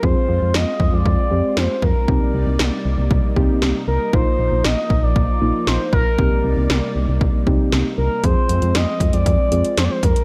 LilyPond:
<<
  \new Staff \with { instrumentName = "Analog synth lead" } { \time 4/4 \key f \dorian \tempo 4 = 117 c''4 ees''8. d''4~ d''16 c''8 bes'8~ | bes'4. r2 bes'8 | c''4 ees''8. d''4~ d''16 c''8 bes'8~ | bes'4. r2 bes'8 |
c''4 ees''8. d''4~ d''16 c''32 d''32 c''16 bes'8 | }
  \new Staff \with { instrumentName = "Synth keys" } { \time 4/4 \key f \dorian <c' f' aes'>4 r4. <c' f' g'>4 r8 | <c' ees' g'>4 r4. <c' ees' g'>4 r8 | <bes ees' f'>4 r4. <bes ees' f'>4 r8 | <c' ees' g'>4 r4. <c' ees' g'>4 r8 |
<c' f' aes'>4 r4. <c' f' aes'>4 r8 | }
  \new Staff \with { instrumentName = "Analog synth pad" } { \time 4/4 \key f \dorian << { f'1 | ees'1~ | ees'1~ | ees'1 |
c'1 | } \\ { <aes c'>1 | <c g bes d''>1 | <f bes>1 | <c g d''>1 |
<f aes>1 | } >> }
  \new Staff \with { instrumentName = "FM bass" } { \clef bass \time 4/4 \key f \dorian f,16 r16 f,16 f,16 f,16 r16 f,16 f,16 f,16 r16 f,16 r16 f,16 r16 f,16 r16 | c,16 r16 c,16 c,16 c,16 r16 c,16 c,16 c,16 r16 c,16 r16 c,16 r16 c,16 r16 | bes,,16 r16 bes,,16 bes,,16 bes,,16 r16 bes,,16 bes,,16 bes,,16 r16 bes,,16 r16 bes,,16 r16 bes,,16 r16 | c,16 r16 c,16 c,16 c,16 r16 c,16 c,16 c,16 r16 c,16 r16 c,16 r16 c,16 r16 |
f,16 r16 f,16 f,16 f,16 r16 f,16 f,16 f,16 r16 f,16 r16 f,16 r16 f,16 r16 | }
  \new DrumStaff \with { instrumentName = "Drums" } \drummode { \time 4/4 bd4 sn8 bd8 bd4 sn8 bd8 | bd4 sn4 bd8 bd8 sn4 | bd4 sn8 bd8 bd4 sn8 bd8 | bd4 sn4 bd8 bd8 sn4 |
<hh bd>8 hh16 hh16 <hh sn>8 <hh bd>16 hh16 <hh bd>8 hh16 hh16 <hh sn>8 <hh bd>16 hh16 | }
>>